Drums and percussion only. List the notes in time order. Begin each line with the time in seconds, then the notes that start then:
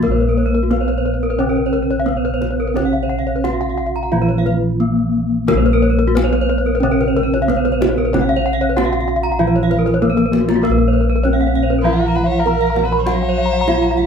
0.03 kendang low
0.71 kendang high
0.89 kendang slap
1.74 kendang low
1.91 kendang slap
2.09 kendang low
2.26 kendang slap
2.42 kendang high, kendang low
2.77 kendang high, kendang low
3.45 kendang high
3.61 kendang slap
4.29 kendang slap
4.46 kendang low
5.48 kendang high, kendang low
6.17 kendang high
7.00 kendang slap
7.17 kendang low
7.34 kendang slap
7.50 kendang low
7.66 kendang slap
7.82 kendang high, kendang low
8.14 kendang high, kendang low
8.30 kendang slap
8.78 kendang high
9.25 kendang slap
9.56 kendang slap
9.71 kendang low
9.87 kendang slap
10.03 kendang low
10.18 kendang low
10.33 kendang high
10.49 kendang high
10.65 kendang low
11.25 kendang high
11.55 kendang low
11.70 kendang slap
12.15 kendang low
12.46 kendang slap
12.61 kendang slap
12.76 kendang high
12.92 kendang slap
13.07 kendang high, kendang low
13.68 kendang high
13.98 kendang slap, kendang low